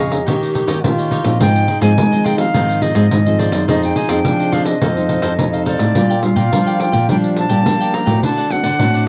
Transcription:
Already playing: F2 C#3 G#4 C#5 D#5
0.00 F5
0.11 C#5 F5 A#5, pandeiro
0.26 D#3 A#3 C#4 D#4 G4 C#5 D#5, pandeiro
0.43 pandeiro
0.54 D#4 G4 C#5 D#5, pandeiro
0.67 D#3 A#3 C#4 D#4 G4 C#5 D#5, pandeiro
0.84 A#2 D#3 A#3 C#4 F4 G4, pandeiro
0.98 G4 C#5 D#5, pandeiro
1.11 D#4 G4 C#5 D#5, pandeiro
1.24 A#2 F3 C4 D#4, pandeiro
1.40 G#2 D#4 F4 G#4 C5 D#5 G5, pandeiro
1.56 pandeiro
1.68 F4 G#4 C5 D#5, pandeiro
1.81 G#2 F3 C4 D#4 F4 G#4 C5 D#5 G#5, pandeiro
1.98 D#3 G#3, pandeiro
2.12 F3 C4 D#4 G#4 C5 D#5, pandeiro
2.24 F4 G#4 C5 D#5 G5, pandeiro
2.38 F3 C4 D#4 G#4 C5 D#5 F5, pandeiro
2.54 G#2 D#3 F3 C4 D#4 F4 G#4 C5 D#5, pandeiro
2.69 pandeiro
2.82 F3 C4 D#4 F4 G#4 C5 D#5, pandeiro
2.95 G#2 F4 G#4 C5 D#5, pandeiro
3.11 G#2 D#3, pandeiro
3.26 F3 C4 D#4 G#4 C5 D#5, pandeiro
3.39 F4 G#4 C5 D5 D#5, pandeiro
3.52 F#2 C4 D#4 G#4, pandeiro
3.68 F2 F3 D#4 F4 G#4 C5 D#5, pandeiro
3.83 C4 D#4 G#4 G5, pandeiro
3.95 F4 G#4 C5 D#5 G#5, pandeiro
4.09 F2 C4 D#4 F4 G#4 C5 D#5 G5, pandeiro
4.25 C3 F3 D4, pandeiro
4.40 G#4 C5 D#5, pandeiro
4.52 C4 D#4 F4 G#4 C5 D#5 F5, pandeiro
4.65 G#4 C5 D#5, pandeiro
4.81 F2 F3 C4 D#4 A4 C5 F5, pandeiro
4.97 C4 D#4 A4, pandeiro
5.08 D#4 A4 C5 F5, pandeiro
5.22 F2 C4 D#4 A4 C5 F5, pandeiro
5.38 F2 C3 D#4, pandeiro
5.53 A4 C5 F5, pandeiro
5.65 C4 D#4 A4 C5 D5 F5, pandeiro
5.79 A2, pandeiro
5.95 A#2 G3 D4 F4 A#4 D5 G5, pandeiro
6.10 A#4 D5 G5, pandeiro
6.23 G3 D4 F4 F5, muted cavaquinho stroke, pandeiro
6.36 A#2 A#4 D5 G5, pandeiro
6.52 F3 G3 D4 F4 A#4 D5 G5, pandeiro
6.66 A#4 D5 G5, pandeiro
6.80 G5, pandeiro
6.92 A#2 A#4 D5 G5, pandeiro
7.09 A#2 F3 G3 D4 F4 A#4 D5 G5, pandeiro
7.24 pandeiro
7.36 A5, muted cavaquinho stroke, pandeiro
7.49 A#2 G3 D4 F4 A#4 D5 G5, pandeiro
7.66 F3 A#3, pandeiro
7.80 A#4 D5 G5, pandeiro
7.93 D4 A#4 D5 G5 A#5, pandeiro
8.06 A2 A3 C4 F#4 A#4 D5 G5, pandeiro
8.23 D3 D4 C5 D5 F#5 A5, pandeiro
8.37 C5 D5 F#5, pandeiro
8.50 A3 C4 F#4 F#5, muted cavaquinho stroke, pandeiro
8.63 D3 C5 D5 F#5, pandeiro
8.79 A2 A3 C4 D4 F#4 C5 D5 F#5, pandeiro
8.94 C5 D5 F#5, pandeiro

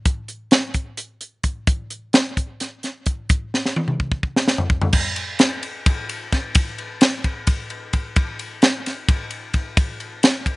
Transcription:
0.05 kick, closed hi-hat
0.28 closed hi-hat
0.51 snare, closed hi-hat
0.74 kick, closed hi-hat
0.97 closed hi-hat
1.21 closed hi-hat
1.44 kick, closed hi-hat
1.67 kick, closed hi-hat
1.90 closed hi-hat
2.13 snare, closed hi-hat
2.37 kick, closed hi-hat
2.60 snare, closed hi-hat
2.83 snare, closed hi-hat
3.06 kick, closed hi-hat
3.29 kick, closed hi-hat
3.54 snare
3.66 snare
3.76 high tom
3.88 mid tom
4.00 kick
4.12 kick
4.23 kick
4.36 snare
4.48 snare
4.58 floor tom
4.70 kick
4.82 floor tom
4.93 kick, crash
5.16 ride
5.39 snare, ride
5.63 ride
5.86 kick, ride
6.09 ride
6.32 kick, snare, ride
6.55 kick, ride
6.78 ride
7.01 snare, ride
7.24 kick, ride
7.47 kick, ride
7.70 ride
7.93 kick, ride
8.16 kick, ride
8.39 ride
8.62 snare, ride
8.86 snare, ride
9.08 kick, ride
9.31 ride
9.53 kick, ride
9.77 kick, ride
10.00 ride
10.23 snare, ride
10.46 kick, ride

